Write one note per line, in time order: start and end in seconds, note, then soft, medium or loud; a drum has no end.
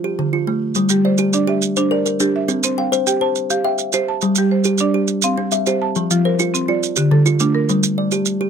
0.04 0.47 G4 medium
0.19 0.47 D3 medium
0.33 0.76 F4 medium
0.47 0.76 A3 medium
0.75 1.05 G3 medium
0.75 maracas soft
0.89 1.19 G3 medium
0.89 1.33 G4 medium
0.89 maracas medium
1.05 1.48 C5 medium
1.05 1.48 D5 medium
1.18 1.46 G4 medium
1.18 maracas soft
1.33 1.62 D4 medium
1.33 1.77 D5 medium
1.33 maracas medium
1.47 1.77 G4 medium
1.47 1.92 E5 medium
1.62 maracas medium
1.76 2.06 D4 medium
1.76 2.20 C5 medium
1.76 maracas medium
1.91 2.05 A#4 medium
1.91 2.35 D5 medium
2.06 2.49 A#4 medium
2.06 maracas medium
2.20 2.49 D4 medium
2.20 2.49 G4 medium
2.20 maracas medium
2.36 2.79 E5 medium
2.48 2.78 C4 medium
2.48 maracas medium
2.63 2.93 C4 medium
2.63 3.07 C5 medium
2.63 maracas medium
2.78 3.22 F5 medium
2.78 3.21 G5 medium
2.92 3.20 C5 medium
2.92 maracas medium
3.07 3.36 G4 medium
3.07 3.50 G5 medium
3.07 maracas medium
3.21 3.50 C5 medium
3.21 3.65 A5 medium
3.35 maracas medium
3.50 3.79 G4 medium
3.50 3.94 F5 medium
3.50 maracas medium
3.64 3.93 E5 medium
3.64 4.08 G5 medium
3.78 maracas medium
3.92 4.23 G4 medium
3.92 4.23 C5 medium
3.92 maracas medium
4.09 4.52 A5 medium
4.21 4.51 G3 medium
4.21 maracas medium
4.35 4.67 G3 medium
4.35 4.81 G4 medium
4.35 maracas medium
4.51 4.95 C5 medium
4.64 4.93 G4 medium
4.64 maracas medium
4.78 5.09 D4 medium
4.78 5.24 D5 medium
4.78 maracas medium
4.94 5.09 G4 medium
5.08 maracas medium
5.22 5.53 C4 medium
5.22 5.67 F5 medium
5.22 maracas medium
5.38 5.67 C4 medium
5.51 5.96 E5 medium
5.51 maracas medium
5.66 5.96 G4 medium
5.66 5.96 C5 medium
5.66 maracas medium
5.82 6.25 A5 medium
5.95 6.25 F3 medium
5.95 maracas medium
6.11 6.40 F3 medium
6.11 6.54 F4 medium
6.11 maracas medium
6.25 6.68 A#4 medium
6.25 6.68 C5 medium
6.39 6.67 F4 medium
6.39 maracas medium
6.54 6.83 C4 medium
6.54 maracas medium
6.68 6.83 F4 medium
6.68 7.12 D5 medium
6.83 maracas medium
6.96 7.26 D3 medium
6.96 7.40 G4 medium
6.96 maracas medium
7.11 7.40 D3 medium
7.11 7.55 A4 medium
7.26 7.69 F4 medium
7.26 maracas medium
7.40 7.69 A3 medium
7.40 7.69 D4 medium
7.40 maracas medium
7.55 7.98 A#4 medium
7.69 7.98 G3 medium
7.69 maracas medium
7.83 maracas medium
7.98 8.41 D5 medium
8.11 8.40 G4 medium
8.11 maracas medium
8.25 maracas medium
8.41 8.50 G4 medium